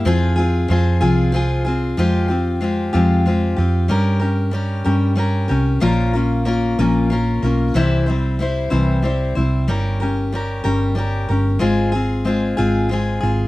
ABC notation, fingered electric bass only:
X:1
M:6/8
L:1/8
Q:3/8=62
K:Fm
V:1 name="Fingered electric bass" clef=bass
F,,2 F,, C,,3 | F,,3 F,,2 F,, | G,,3 G,,2 C,, | B,,,3 B,,,2 =B,,, |
C,,3 C,,2 C,, | G,,,3 G,,,2 G,,, | A,,,3 A,,,2 A,,, |]